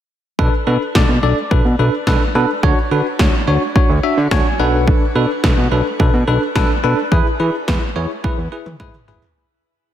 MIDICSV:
0, 0, Header, 1, 4, 480
1, 0, Start_track
1, 0, Tempo, 560748
1, 333, Time_signature, 4, 2, 24, 8
1, 8508, End_track
2, 0, Start_track
2, 0, Title_t, "Tine electric piano"
2, 0, Program_c, 0, 4
2, 332, Note_on_c, 0, 69, 92
2, 332, Note_on_c, 0, 71, 109
2, 333, Note_on_c, 0, 62, 103
2, 456, Note_off_c, 0, 62, 0
2, 456, Note_off_c, 0, 69, 0
2, 456, Note_off_c, 0, 71, 0
2, 573, Note_on_c, 0, 62, 79
2, 573, Note_on_c, 0, 69, 74
2, 573, Note_on_c, 0, 71, 90
2, 696, Note_off_c, 0, 62, 0
2, 696, Note_off_c, 0, 71, 0
2, 697, Note_off_c, 0, 69, 0
2, 814, Note_on_c, 0, 62, 81
2, 814, Note_on_c, 0, 74, 90
2, 815, Note_on_c, 0, 69, 75
2, 937, Note_off_c, 0, 62, 0
2, 937, Note_off_c, 0, 69, 0
2, 937, Note_off_c, 0, 74, 0
2, 1053, Note_on_c, 0, 62, 78
2, 1053, Note_on_c, 0, 69, 73
2, 1054, Note_on_c, 0, 74, 85
2, 1177, Note_off_c, 0, 62, 0
2, 1177, Note_off_c, 0, 69, 0
2, 1177, Note_off_c, 0, 74, 0
2, 1293, Note_on_c, 0, 69, 75
2, 1294, Note_on_c, 0, 62, 80
2, 1294, Note_on_c, 0, 71, 89
2, 1417, Note_off_c, 0, 62, 0
2, 1417, Note_off_c, 0, 69, 0
2, 1417, Note_off_c, 0, 71, 0
2, 1534, Note_on_c, 0, 62, 79
2, 1534, Note_on_c, 0, 69, 75
2, 1535, Note_on_c, 0, 71, 89
2, 1657, Note_off_c, 0, 62, 0
2, 1657, Note_off_c, 0, 69, 0
2, 1657, Note_off_c, 0, 71, 0
2, 1773, Note_on_c, 0, 62, 104
2, 1773, Note_on_c, 0, 69, 98
2, 1773, Note_on_c, 0, 71, 118
2, 1897, Note_off_c, 0, 62, 0
2, 1897, Note_off_c, 0, 69, 0
2, 1897, Note_off_c, 0, 71, 0
2, 2013, Note_on_c, 0, 62, 104
2, 2013, Note_on_c, 0, 69, 94
2, 2014, Note_on_c, 0, 71, 112
2, 2137, Note_off_c, 0, 62, 0
2, 2137, Note_off_c, 0, 69, 0
2, 2137, Note_off_c, 0, 71, 0
2, 2254, Note_on_c, 0, 62, 103
2, 2254, Note_on_c, 0, 66, 94
2, 2255, Note_on_c, 0, 73, 112
2, 2377, Note_off_c, 0, 62, 0
2, 2377, Note_off_c, 0, 66, 0
2, 2377, Note_off_c, 0, 73, 0
2, 2494, Note_on_c, 0, 62, 80
2, 2494, Note_on_c, 0, 71, 88
2, 2495, Note_on_c, 0, 66, 72
2, 2617, Note_off_c, 0, 62, 0
2, 2617, Note_off_c, 0, 66, 0
2, 2617, Note_off_c, 0, 71, 0
2, 2734, Note_on_c, 0, 66, 72
2, 2734, Note_on_c, 0, 73, 87
2, 2735, Note_on_c, 0, 62, 82
2, 2857, Note_off_c, 0, 62, 0
2, 2857, Note_off_c, 0, 66, 0
2, 2857, Note_off_c, 0, 73, 0
2, 2974, Note_on_c, 0, 62, 78
2, 2974, Note_on_c, 0, 73, 88
2, 2975, Note_on_c, 0, 66, 73
2, 3097, Note_off_c, 0, 62, 0
2, 3097, Note_off_c, 0, 66, 0
2, 3097, Note_off_c, 0, 73, 0
2, 3216, Note_on_c, 0, 62, 79
2, 3216, Note_on_c, 0, 66, 74
2, 3216, Note_on_c, 0, 73, 91
2, 3338, Note_off_c, 0, 62, 0
2, 3338, Note_off_c, 0, 66, 0
2, 3338, Note_off_c, 0, 73, 0
2, 3454, Note_on_c, 0, 62, 79
2, 3454, Note_on_c, 0, 66, 74
2, 3454, Note_on_c, 0, 76, 89
2, 3577, Note_off_c, 0, 62, 0
2, 3577, Note_off_c, 0, 66, 0
2, 3577, Note_off_c, 0, 76, 0
2, 3694, Note_on_c, 0, 62, 109
2, 3694, Note_on_c, 0, 66, 96
2, 3694, Note_on_c, 0, 73, 118
2, 3695, Note_on_c, 0, 80, 70
2, 3817, Note_off_c, 0, 62, 0
2, 3817, Note_off_c, 0, 66, 0
2, 3817, Note_off_c, 0, 73, 0
2, 3917, Note_off_c, 0, 80, 0
2, 3933, Note_on_c, 0, 78, 70
2, 3934, Note_on_c, 0, 62, 85
2, 3934, Note_on_c, 0, 69, 78
2, 3934, Note_on_c, 0, 71, 94
2, 4156, Note_off_c, 0, 78, 0
2, 4317, Note_off_c, 0, 62, 0
2, 4317, Note_off_c, 0, 69, 0
2, 4317, Note_off_c, 0, 71, 0
2, 4414, Note_on_c, 0, 62, 80
2, 4414, Note_on_c, 0, 69, 72
2, 4414, Note_on_c, 0, 71, 92
2, 4537, Note_off_c, 0, 62, 0
2, 4537, Note_off_c, 0, 69, 0
2, 4537, Note_off_c, 0, 71, 0
2, 4653, Note_on_c, 0, 62, 83
2, 4654, Note_on_c, 0, 69, 73
2, 4654, Note_on_c, 0, 71, 91
2, 4777, Note_off_c, 0, 62, 0
2, 4777, Note_off_c, 0, 69, 0
2, 4777, Note_off_c, 0, 71, 0
2, 4893, Note_on_c, 0, 62, 78
2, 4893, Note_on_c, 0, 69, 72
2, 4893, Note_on_c, 0, 71, 89
2, 5016, Note_off_c, 0, 62, 0
2, 5016, Note_off_c, 0, 71, 0
2, 5017, Note_off_c, 0, 69, 0
2, 5132, Note_on_c, 0, 62, 85
2, 5132, Note_on_c, 0, 71, 90
2, 5133, Note_on_c, 0, 69, 76
2, 5256, Note_off_c, 0, 62, 0
2, 5256, Note_off_c, 0, 69, 0
2, 5256, Note_off_c, 0, 71, 0
2, 5372, Note_on_c, 0, 69, 73
2, 5372, Note_on_c, 0, 71, 92
2, 5373, Note_on_c, 0, 62, 82
2, 5496, Note_off_c, 0, 62, 0
2, 5496, Note_off_c, 0, 69, 0
2, 5496, Note_off_c, 0, 71, 0
2, 5613, Note_on_c, 0, 62, 110
2, 5613, Note_on_c, 0, 69, 98
2, 5613, Note_on_c, 0, 71, 117
2, 5736, Note_off_c, 0, 62, 0
2, 5736, Note_off_c, 0, 69, 0
2, 5736, Note_off_c, 0, 71, 0
2, 5853, Note_on_c, 0, 62, 106
2, 5853, Note_on_c, 0, 69, 93
2, 5853, Note_on_c, 0, 71, 113
2, 5976, Note_off_c, 0, 69, 0
2, 5976, Note_off_c, 0, 71, 0
2, 5977, Note_off_c, 0, 62, 0
2, 6092, Note_on_c, 0, 71, 111
2, 6093, Note_on_c, 0, 64, 102
2, 6093, Note_on_c, 0, 68, 95
2, 6216, Note_off_c, 0, 68, 0
2, 6216, Note_off_c, 0, 71, 0
2, 6217, Note_off_c, 0, 64, 0
2, 6333, Note_on_c, 0, 64, 81
2, 6333, Note_on_c, 0, 68, 75
2, 6333, Note_on_c, 0, 71, 87
2, 6456, Note_off_c, 0, 68, 0
2, 6456, Note_off_c, 0, 71, 0
2, 6457, Note_off_c, 0, 64, 0
2, 6572, Note_on_c, 0, 64, 80
2, 6572, Note_on_c, 0, 68, 76
2, 6572, Note_on_c, 0, 71, 91
2, 6696, Note_off_c, 0, 64, 0
2, 6696, Note_off_c, 0, 68, 0
2, 6696, Note_off_c, 0, 71, 0
2, 6812, Note_on_c, 0, 64, 82
2, 6812, Note_on_c, 0, 68, 74
2, 6812, Note_on_c, 0, 73, 92
2, 6936, Note_off_c, 0, 64, 0
2, 6936, Note_off_c, 0, 68, 0
2, 6936, Note_off_c, 0, 73, 0
2, 7053, Note_on_c, 0, 64, 79
2, 7053, Note_on_c, 0, 68, 72
2, 7053, Note_on_c, 0, 71, 91
2, 7176, Note_off_c, 0, 64, 0
2, 7177, Note_off_c, 0, 68, 0
2, 7177, Note_off_c, 0, 71, 0
2, 7293, Note_on_c, 0, 64, 80
2, 7293, Note_on_c, 0, 68, 75
2, 7293, Note_on_c, 0, 71, 88
2, 7416, Note_off_c, 0, 64, 0
2, 7416, Note_off_c, 0, 68, 0
2, 7417, Note_off_c, 0, 71, 0
2, 7533, Note_on_c, 0, 68, 98
2, 7534, Note_on_c, 0, 64, 108
2, 7534, Note_on_c, 0, 71, 120
2, 7657, Note_off_c, 0, 64, 0
2, 7657, Note_off_c, 0, 68, 0
2, 7657, Note_off_c, 0, 71, 0
2, 7772, Note_on_c, 0, 64, 102
2, 7772, Note_on_c, 0, 68, 94
2, 7772, Note_on_c, 0, 71, 113
2, 7896, Note_off_c, 0, 64, 0
2, 7896, Note_off_c, 0, 68, 0
2, 7896, Note_off_c, 0, 71, 0
2, 8508, End_track
3, 0, Start_track
3, 0, Title_t, "Analog synth bass"
3, 0, Program_c, 1, 38
3, 333, Note_on_c, 1, 35, 108
3, 423, Note_off_c, 1, 35, 0
3, 574, Note_on_c, 1, 47, 99
3, 663, Note_off_c, 1, 47, 0
3, 816, Note_on_c, 1, 35, 105
3, 905, Note_off_c, 1, 35, 0
3, 934, Note_on_c, 1, 47, 101
3, 1023, Note_off_c, 1, 47, 0
3, 1054, Note_on_c, 1, 35, 100
3, 1143, Note_off_c, 1, 35, 0
3, 1295, Note_on_c, 1, 35, 94
3, 1384, Note_off_c, 1, 35, 0
3, 1413, Note_on_c, 1, 47, 101
3, 1503, Note_off_c, 1, 47, 0
3, 1533, Note_on_c, 1, 35, 98
3, 1623, Note_off_c, 1, 35, 0
3, 1772, Note_on_c, 1, 35, 97
3, 1862, Note_off_c, 1, 35, 0
3, 2013, Note_on_c, 1, 47, 104
3, 2103, Note_off_c, 1, 47, 0
3, 2253, Note_on_c, 1, 38, 109
3, 2343, Note_off_c, 1, 38, 0
3, 2494, Note_on_c, 1, 50, 103
3, 2583, Note_off_c, 1, 50, 0
3, 2736, Note_on_c, 1, 38, 94
3, 2825, Note_off_c, 1, 38, 0
3, 2973, Note_on_c, 1, 38, 103
3, 3063, Note_off_c, 1, 38, 0
3, 3334, Note_on_c, 1, 38, 96
3, 3423, Note_off_c, 1, 38, 0
3, 3573, Note_on_c, 1, 50, 93
3, 3663, Note_off_c, 1, 50, 0
3, 3692, Note_on_c, 1, 38, 90
3, 3782, Note_off_c, 1, 38, 0
3, 3933, Note_on_c, 1, 35, 97
3, 4202, Note_off_c, 1, 35, 0
3, 4413, Note_on_c, 1, 47, 102
3, 4502, Note_off_c, 1, 47, 0
3, 4656, Note_on_c, 1, 35, 105
3, 4744, Note_off_c, 1, 35, 0
3, 4773, Note_on_c, 1, 47, 97
3, 4863, Note_off_c, 1, 47, 0
3, 4893, Note_on_c, 1, 35, 97
3, 4983, Note_off_c, 1, 35, 0
3, 5135, Note_on_c, 1, 35, 101
3, 5224, Note_off_c, 1, 35, 0
3, 5254, Note_on_c, 1, 47, 92
3, 5343, Note_off_c, 1, 47, 0
3, 5374, Note_on_c, 1, 35, 97
3, 5463, Note_off_c, 1, 35, 0
3, 5612, Note_on_c, 1, 35, 94
3, 5702, Note_off_c, 1, 35, 0
3, 5854, Note_on_c, 1, 47, 101
3, 5943, Note_off_c, 1, 47, 0
3, 6093, Note_on_c, 1, 40, 104
3, 6182, Note_off_c, 1, 40, 0
3, 6333, Note_on_c, 1, 52, 88
3, 6423, Note_off_c, 1, 52, 0
3, 6576, Note_on_c, 1, 40, 103
3, 6664, Note_off_c, 1, 40, 0
3, 6813, Note_on_c, 1, 40, 100
3, 6903, Note_off_c, 1, 40, 0
3, 7173, Note_on_c, 1, 40, 106
3, 7263, Note_off_c, 1, 40, 0
3, 7414, Note_on_c, 1, 52, 94
3, 7503, Note_off_c, 1, 52, 0
3, 7532, Note_on_c, 1, 44, 93
3, 7622, Note_off_c, 1, 44, 0
3, 7774, Note_on_c, 1, 32, 87
3, 7863, Note_off_c, 1, 32, 0
3, 8508, End_track
4, 0, Start_track
4, 0, Title_t, "Drums"
4, 333, Note_on_c, 9, 36, 109
4, 418, Note_off_c, 9, 36, 0
4, 814, Note_on_c, 9, 38, 106
4, 816, Note_on_c, 9, 36, 108
4, 900, Note_off_c, 9, 38, 0
4, 901, Note_off_c, 9, 36, 0
4, 1295, Note_on_c, 9, 36, 116
4, 1380, Note_off_c, 9, 36, 0
4, 1772, Note_on_c, 9, 36, 109
4, 1772, Note_on_c, 9, 38, 102
4, 1857, Note_off_c, 9, 36, 0
4, 1858, Note_off_c, 9, 38, 0
4, 2253, Note_on_c, 9, 36, 109
4, 2339, Note_off_c, 9, 36, 0
4, 2734, Note_on_c, 9, 38, 114
4, 2736, Note_on_c, 9, 36, 110
4, 2819, Note_off_c, 9, 38, 0
4, 2822, Note_off_c, 9, 36, 0
4, 3215, Note_on_c, 9, 36, 115
4, 3301, Note_off_c, 9, 36, 0
4, 3692, Note_on_c, 9, 36, 110
4, 3692, Note_on_c, 9, 38, 106
4, 3778, Note_off_c, 9, 36, 0
4, 3778, Note_off_c, 9, 38, 0
4, 4173, Note_on_c, 9, 36, 111
4, 4259, Note_off_c, 9, 36, 0
4, 4654, Note_on_c, 9, 38, 115
4, 4656, Note_on_c, 9, 36, 115
4, 4740, Note_off_c, 9, 38, 0
4, 4741, Note_off_c, 9, 36, 0
4, 5135, Note_on_c, 9, 36, 117
4, 5220, Note_off_c, 9, 36, 0
4, 5612, Note_on_c, 9, 36, 108
4, 5612, Note_on_c, 9, 38, 101
4, 5697, Note_off_c, 9, 36, 0
4, 5698, Note_off_c, 9, 38, 0
4, 6093, Note_on_c, 9, 36, 113
4, 6178, Note_off_c, 9, 36, 0
4, 6573, Note_on_c, 9, 38, 113
4, 6575, Note_on_c, 9, 36, 113
4, 6659, Note_off_c, 9, 38, 0
4, 6661, Note_off_c, 9, 36, 0
4, 7054, Note_on_c, 9, 48, 55
4, 7055, Note_on_c, 9, 36, 118
4, 7139, Note_off_c, 9, 48, 0
4, 7140, Note_off_c, 9, 36, 0
4, 7414, Note_on_c, 9, 47, 64
4, 7499, Note_off_c, 9, 47, 0
4, 7532, Note_on_c, 9, 36, 108
4, 7533, Note_on_c, 9, 45, 81
4, 7618, Note_off_c, 9, 36, 0
4, 7619, Note_off_c, 9, 45, 0
4, 7654, Note_on_c, 9, 45, 72
4, 7739, Note_off_c, 9, 45, 0
4, 7774, Note_on_c, 9, 43, 92
4, 7860, Note_off_c, 9, 43, 0
4, 7893, Note_on_c, 9, 43, 83
4, 7979, Note_off_c, 9, 43, 0
4, 8508, End_track
0, 0, End_of_file